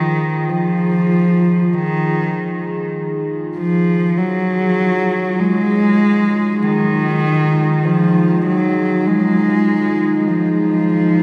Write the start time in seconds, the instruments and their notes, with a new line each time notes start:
Already playing: cello D#3, analog synth pad D#4 F4 G#4
0.49 cello F3
1.73 cello D#3
3.57 cello F3
4.18 cello F#3
5.39 cello G#3
6.63 cello D#3
7.85 cello F3
8.46 cello F#3
9.07 cello G#3
10.28 cello F3